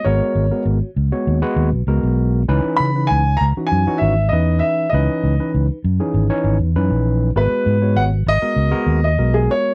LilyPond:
<<
  \new Staff \with { instrumentName = "Grand piano" } { \time 4/4 \key cis \dorian \tempo 4 = 98 cis''4 r2. | r8 b''8 gis''8 ais''8 gis''8 e''8 dis''8 e''8 | dis''4 r2. | b'4 fis''8 dis''4~ dis''16 dis''8 gis'16 cis''8 | }
  \new Staff \with { instrumentName = "Tine electric piano" } { \time 4/4 \key cis \dorian <gis b fis' ais'>8. <gis b fis' ais'>8 <fis' cis''>16 r16 <gis b fis' cis''>8 <gis b fis' b'>8 <fis' b'>16 <gis b fis' ais'>4 | <e cis' dis' b'>8. <e cis' dis' b'>8 <dis' cis''>16 r16 <e cis' dis' fis'>8 <e cis' dis' fis'>8 <dis' b'>16 <e cis' dis' b'>4 | <e cis' dis' b'>8. <e cis' dis' b'>8 <dis' b'>16 r16 <e cis' dis' gis'>8 <e cis' dis' cis''>8 <dis' b'>16 <e cis' dis' b'>4 | <gis b fis' b'>8. <gis b fis' cis''>8 <fis' b'>16 r16 <gis b fis' ais'>8 <gis b fis' ais'>8 <fis' ais'>16 <gis b fis' ais'>4 | }
  \new Staff \with { instrumentName = "Fingered electric bass" } { \clef bass \time 4/4 \key cis \dorian gis,,16 r16 gis,,16 r16 gis,,16 r16 cis,16 r16 dis,16 r16 dis,16 b,,16 cis,16 b,,8. | cis,16 r16 cis8 cis,8 cis,16 r16 fis,16 r16 gis,,8 e,8 r8 | cis,16 r16 cis,16 r16 cis,16 r16 fis,16 r16 gis,,16 r16 gis,,16 e,16 fis,16 ais,,8. | gis,,16 r16 gis,8 gis,,8 gis,,16 r16 cis,16 r16 dis,8 b,,8 r8 | }
>>